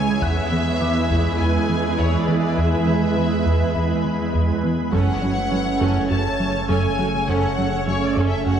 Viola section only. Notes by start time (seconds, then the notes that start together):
Already playing: E4 G#4
0.22 E4 G#4
4.93 C#4 A4
5.22 A3 F#4
5.52 F#3 C#4
5.81 C#4 A4
6.10 A3 F#4
6.69 C#4 A4
6.99 A3 F#4
7.28 C#4 A4
7.58 A3 F#4
7.87 F#3 C#4
8.17 C#4 A4
8.47 A3 F#4